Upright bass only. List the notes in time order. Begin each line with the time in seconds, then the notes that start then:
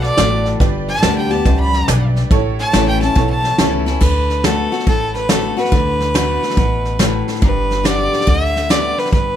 Already playing: B1
0.18 A1
0.60 G1
1.03 D2
1.46 C#2
1.89 B1
2.31 A1
2.74 A1
3.16 B1
3.59 C#2
4.01 D2
4.87 A1
5.72 D2
6.57 A1
7.42 G1
8.27 D2
9.13 G1